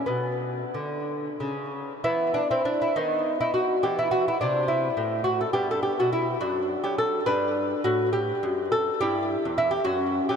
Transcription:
0.06 0.61 B2 soft
0.06 1.03 B3 soft
0.74 1.28 D3 soft
1.40 1.92 C#3 soft
2.04 2.41 E3 medium
2.04 2.50 B3 soft
2.04 2.33 E4 medium
2.34 2.50 D4 medium
2.51 2.65 C4 medium
2.51 2.80 E4 soft
2.65 2.80 D4 medium
2.82 2.96 E4 medium
2.96 3.31 D#3 soft
2.96 3.80 B3 soft
2.96 3.38 D#4 medium
3.40 3.75 D#4 soft
3.40 3.53 E4 medium
3.54 3.82 F#4 medium
3.83 4.30 E3 medium
3.83 5.53 B3 soft
3.83 3.98 G4 medium
3.99 4.11 E4 medium
4.11 4.27 F#4 medium
4.28 4.40 E4 medium
4.41 4.88 C3 medium
4.41 4.68 D4 medium
4.68 5.24 E4 medium
4.97 5.44 A2 medium
5.24 5.41 F#4 medium
5.41 5.53 A4 medium
5.53 5.89 G2 medium
5.53 6.37 B3 soft
5.53 5.69 G4 medium
5.71 5.82 A4 medium
5.83 5.98 G4 medium
5.99 6.34 B2 medium
5.99 6.12 F#4 medium
6.13 6.40 E4 medium
6.41 6.75 F#2 medium
6.41 7.23 D4 soft
6.41 6.82 F#4 medium
6.84 7.18 F#3 soft
6.84 6.98 G4 medium
6.98 7.26 A4 medium
7.26 7.73 G2 medium
7.26 8.96 D4 soft
7.26 7.81 B4 medium
7.84 8.31 A2 medium
7.84 8.12 F#4 medium
8.13 8.68 G4 medium
8.43 8.89 F#2 medium
8.72 8.99 A4 medium
9.01 9.35 G2 medium
9.01 9.57 E4 soft
9.01 9.55 G4 medium
9.45 9.79 E2 medium
9.58 9.72 E4 medium
9.71 9.85 G4 medium
9.84 10.19 F#2 medium
9.84 10.36 C#4 soft
9.84 10.26 F#4 medium
10.29 10.36 F#3 medium
10.29 10.36 G4 medium

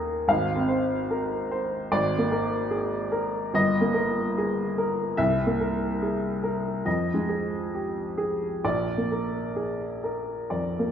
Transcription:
0.00 0.25 D#2 soft
0.00 0.31 A#3 soft
0.00 0.31 G#4 soft
0.00 0.32 A#4 soft
0.00 0.31 D#5 medium
0.28 1.87 G#1 medium
0.28 0.94 F5 medium
0.56 0.99 C4 soft
0.68 1.34 C5 soft
1.11 1.51 A#4 soft
1.51 1.92 C5 soft
1.92 3.50 G#1 medium
1.92 2.56 D5 medium
2.18 2.61 A#3 soft
2.31 2.96 A#4 soft
2.70 3.12 G#4 soft
3.12 3.53 A#4 soft
3.54 5.15 G1 medium
3.54 4.20 D#5 medium
3.81 4.25 A#3 soft
3.94 4.60 A#4 medium
4.38 4.78 G#4 soft
4.78 5.19 A#4 soft
5.17 6.81 C2 medium
5.17 5.84 E5 medium
5.46 5.91 A#3 soft
5.61 6.27 A#4 soft
6.02 6.43 G#4 soft
6.43 6.86 A#4 soft
6.85 8.59 F2 soft
6.85 7.55 D#5 medium
7.14 7.60 G#3 soft
7.29 7.99 G#4 soft
7.74 8.18 G4 soft
8.18 8.63 G#4 soft
8.65 10.47 A#1 soft
8.65 9.39 D5 medium
8.98 9.46 A#3 soft
9.12 9.86 A#4 soft
9.56 10.03 G#4 soft
10.04 10.77 A#4 soft
10.50 10.92 F2 soft
10.50 10.92 D5 soft
10.79 10.92 A#3 soft

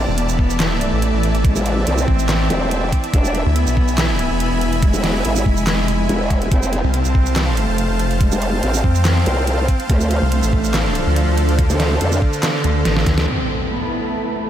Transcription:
0.00 3.10 E3 medium
0.00 3.10 D5 medium
0.00 6.48 E5 medium
0.00 3.10 A5 medium
0.08 0.27 E1 loud
0.18 0.73 B3 loud
0.18 closed hi-hat medium
0.29 0.91 E1 loud
0.29 shaker medium
0.39 kick medium
0.50 shaker medium
0.60 snare loud
0.60 clap medium
0.60 closed hi-hat medium
0.81 1.37 A3 loud
0.81 closed hi-hat medium
0.92 1.12 A1 loud
1.02 closed hi-hat medium
1.13 1.54 A1 loud
1.23 closed hi-hat medium
1.35 closed hi-hat soft
1.45 1.75 G#3 medium
1.45 kick loud
1.45 closed hi-hat medium
1.56 1.85 A1 loud
1.56 shaker medium
1.66 closed hi-hat medium
1.87 2.06 C2 loud
1.87 3.06 C4 loud
1.87 closed hi-hat medium
1.98 shaker medium
2.08 2.49 A1 loud
2.08 kick medium
2.19 shaker medium
2.29 snare loud
2.29 clap medium
2.29 closed hi-hat medium
2.50 2.91 E1 medium
2.50 closed hi-hat medium
2.71 closed hi-hat medium
2.92 kick medium
2.92 closed hi-hat medium
3.04 closed hi-hat soft
3.14 3.44 E1 loud
3.14 3.44 D4 loud
3.14 6.48 E4 medium
3.14 6.48 G#5 medium
3.14 6.48 B5 medium
3.14 kick loud
3.14 closed hi-hat medium
3.25 shaker medium
3.35 closed hi-hat soft
3.46 3.65 D2 loud
3.56 4.11 B3 loud
3.56 closed hi-hat medium
3.67 4.29 B1 loud
3.67 shaker medium
3.77 kick medium
3.88 shaker medium
3.98 snare loud
3.98 clap medium
3.98 closed hi-hat medium
4.19 4.75 B3 loud
4.19 closed hi-hat medium
4.30 4.50 E1 loud
4.40 closed hi-hat medium
4.52 4.92 E1 loud
4.61 closed hi-hat medium
4.73 closed hi-hat soft
4.83 5.13 G#3 medium
4.83 kick loud
4.83 closed hi-hat medium
4.94 5.23 E1 loud
4.94 shaker medium
5.04 snare medium
5.04 closed hi-hat soft
5.25 5.44 G#1 loud
5.25 6.44 G#3 loud
5.25 closed hi-hat medium
5.36 shaker medium
5.46 6.08 F1 loud
5.46 kick medium
5.57 shaker medium
5.67 snare loud
5.67 clap medium
5.67 closed hi-hat medium
5.88 closed hi-hat soft
6.09 6.50 E1 loud
6.09 closed hi-hat medium
6.30 kick medium
6.30 closed hi-hat medium
6.42 closed hi-hat soft
6.52 6.82 F1 loud
6.52 6.82 C4 loud
6.52 13.24 C5 medium
6.52 13.24 F5 medium
6.52 9.86 A5 medium
6.52 kick loud
6.52 closed hi-hat medium
6.63 shaker medium
6.73 closed hi-hat soft
6.84 7.03 C2 loud
6.94 7.49 C4 loud
6.94 closed hi-hat medium
7.05 7.67 C2 loud
7.05 shaker medium
7.15 kick medium
7.26 shaker medium
7.36 snare loud
7.36 clap medium
7.36 closed hi-hat medium
7.57 8.13 A3 loud
7.57 closed hi-hat medium
7.68 7.88 F1 loud
7.78 closed hi-hat medium
7.90 8.30 F1 loud
7.99 closed hi-hat medium
8.11 closed hi-hat soft
8.21 8.51 G#3 medium
8.21 kick loud
8.21 closed hi-hat medium
8.32 8.61 F1 loud
8.32 shaker medium
8.42 closed hi-hat medium
8.63 8.82 A1 loud
8.63 9.82 C4 loud
8.63 closed hi-hat medium
8.74 shaker medium
8.84 9.25 F2 loud
8.84 kick medium
8.95 shaker medium
9.05 snare loud
9.05 clap medium
9.05 closed hi-hat medium
9.26 9.67 C2 loud
9.26 closed hi-hat medium
9.47 closed hi-hat medium
9.68 kick medium
9.68 closed hi-hat medium
9.80 closed hi-hat soft
9.90 10.20 D2 loud
9.90 10.20 A3 loud
9.90 13.24 D4 medium
9.90 13.24 A4 medium
9.90 kick loud
9.90 closed hi-hat medium
10.01 shaker medium
10.11 closed hi-hat medium
10.22 10.41 C2 loud
10.32 10.87 A3 loud
10.32 closed hi-hat medium
10.43 11.05 A1 loud
10.43 shaker medium
10.53 kick medium
10.64 shaker medium
10.74 snare loud
10.74 clap medium
10.74 closed hi-hat medium
10.95 11.51 F3 loud
10.95 closed hi-hat medium
11.06 11.26 D2 loud
11.16 closed hi-hat medium
11.28 11.68 D2 loud
11.38 closed hi-hat medium
11.49 closed hi-hat soft
11.59 11.89 D3 medium
11.59 kick loud
11.59 closed hi-hat medium
11.70 11.99 D2 loud
11.70 shaker medium
11.80 snare medium
11.80 closed hi-hat medium
12.01 12.20 F2 loud
12.01 13.20 D3 loud
12.01 closed hi-hat medium
12.12 shaker medium
12.22 kick medium
12.33 shaker medium
12.43 snare loud
12.43 clap medium
12.43 closed hi-hat medium
12.64 12.84 D2 loud
12.64 closed hi-hat medium
12.85 13.05 A1 medium
12.85 snare medium
12.85 closed hi-hat medium
12.97 snare medium
13.06 13.26 D2 loud
13.06 kick medium
13.06 snare medium
13.06 closed hi-hat medium
13.18 snare medium
13.18 closed hi-hat soft
13.28 14.50 A3 medium
13.28 13.58 C4 medium
13.28 14.50 E4 medium
13.28 14.50 A4 medium
13.28 14.50 B4 medium
13.28 14.50 A5 medium
13.28 crash medium
13.28 impact medium
13.44 14.50 B5 medium
13.63 14.50 E5 medium
13.70 14.25 B3 medium
14.33 14.50 A3 medium

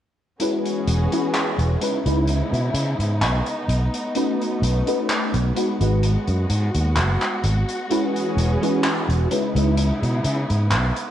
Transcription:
0.40 1.80 E3 medium
0.40 1.06 G#3 medium
0.40 1.79 B3 medium
0.40 1.06 C#4 medium
0.40 1.80 C#4 medium
0.40 1.06 E4 medium
0.40 1.80 F#4 medium
0.40 1.07 F#4 medium
0.40 1.80 G#4 medium
0.40 1.07 B4 medium
0.40 closed hi-hat medium
0.66 closed hi-hat soft
0.87 1.06 E1 medium
0.87 closed hi-hat medium
1.12 1.75 G#3 medium
1.12 1.76 C#4 medium
1.12 1.76 E4 medium
1.12 1.76 F#4 medium
1.12 1.76 B4 medium
1.12 closed hi-hat medium
1.34 clap loud
1.34 closed hi-hat medium
1.59 1.75 E1 medium
1.59 closed hi-hat soft
1.80 3.66 C#3 medium
1.80 3.66 G#3 medium
1.80 2.00 G#3 medium
1.80 7.86 B3 medium
1.80 2.00 C#4 medium
1.80 5.52 D#4 medium
1.80 2.00 D#4 medium
1.80 3.66 E4 medium
1.80 2.00 E4 medium
1.80 2.01 B4 medium
1.80 closed hi-hat medium
2.05 2.41 C#2 medium
2.05 2.32 G#3 medium
2.05 2.33 C#4 medium
2.05 2.33 D#4 medium
2.05 2.33 E4 medium
2.05 2.33 B4 medium
2.05 closed hi-hat medium
2.27 closed hi-hat medium
2.52 2.69 B2 medium
2.52 closed hi-hat soft
2.74 2.93 C#3 medium
2.74 closed hi-hat medium
2.99 3.23 G#2 medium
2.99 closed hi-hat medium
3.21 3.40 B1 medium
3.21 clap loud
3.21 closed hi-hat medium
3.46 closed hi-hat soft
3.68 3.87 B1 medium
3.68 5.54 A3 medium
3.68 closed hi-hat medium
3.94 closed hi-hat medium
4.15 4.81 A3 medium
4.15 4.81 C#4 medium
4.15 4.81 D#4 medium
4.15 4.82 F#4 medium
4.15 4.82 B4 medium
4.15 closed hi-hat medium
4.41 closed hi-hat soft
4.62 4.81 B1 medium
4.62 closed hi-hat medium
4.86 5.50 A3 medium
4.86 5.51 C#4 medium
4.86 5.51 D#4 medium
4.86 5.51 F#4 medium
4.86 5.51 B4 medium
4.86 closed hi-hat medium
5.09 clap loud
5.09 closed hi-hat medium
5.34 5.51 B1 medium
5.34 closed hi-hat medium
5.55 5.75 G#3 medium
5.55 7.88 G#3 medium
5.55 5.75 B3 medium
5.55 5.75 D#4 medium
5.55 9.27 F#4 medium
5.55 5.75 F#4 medium
5.55 5.75 B4 medium
5.55 closed hi-hat medium
5.80 6.16 G#1 medium
5.80 6.07 G#3 medium
5.80 6.07 B3 medium
5.80 6.08 D#4 medium
5.80 6.08 F#4 medium
5.80 6.08 B4 medium
5.80 closed hi-hat medium
6.03 closed hi-hat medium
6.28 6.44 F#2 medium
6.28 closed hi-hat soft
6.50 6.69 G#2 loud
6.50 closed hi-hat medium
6.75 6.98 D#2 medium
6.75 closed hi-hat medium
6.96 7.16 F#1 medium
6.96 clap loud
6.96 closed hi-hat medium
7.21 clap soft
7.21 closed hi-hat soft
7.44 7.63 G#1 medium
7.44 closed hi-hat medium
7.69 closed hi-hat medium
7.90 9.30 E3 medium
7.90 8.56 G#3 medium
7.90 9.30 B3 medium
7.90 8.56 C#4 medium
7.90 9.30 C#4 medium
7.90 8.57 E4 medium
7.90 8.57 F#4 medium
7.90 9.30 G#4 medium
7.90 8.57 B4 medium
7.90 closed hi-hat medium
8.16 closed hi-hat medium
8.37 8.56 E1 medium
8.37 closed hi-hat medium
8.61 9.25 G#3 medium
8.61 9.26 C#4 medium
8.61 9.26 E4 medium
8.61 9.26 F#4 medium
8.61 9.26 B4 medium
8.61 closed hi-hat medium
8.84 clap loud
8.84 closed hi-hat medium
9.09 9.25 E1 medium
9.09 closed hi-hat medium
9.30 11.11 C#3 medium
9.30 9.50 G#3 medium
9.30 11.11 G#3 medium
9.30 11.11 B3 medium
9.30 9.50 C#4 medium
9.30 9.50 D#4 medium
9.30 11.11 D#4 medium
9.30 11.11 E4 medium
9.30 9.50 E4 medium
9.30 9.50 B4 medium
9.30 closed hi-hat medium
9.55 9.90 C#2 medium
9.55 9.82 G#3 medium
9.55 9.83 C#4 medium
9.55 9.83 D#4 medium
9.55 9.83 E4 medium
9.55 9.83 B4 medium
9.55 closed hi-hat medium
9.77 closed hi-hat medium
10.03 10.19 B2 loud
10.03 closed hi-hat medium
10.24 10.43 C#3 medium
10.24 closed hi-hat medium
10.50 10.73 G#2 medium
10.50 closed hi-hat medium
10.71 10.90 B1 medium
10.71 clap loud
10.71 closed hi-hat medium
10.96 closed hi-hat soft

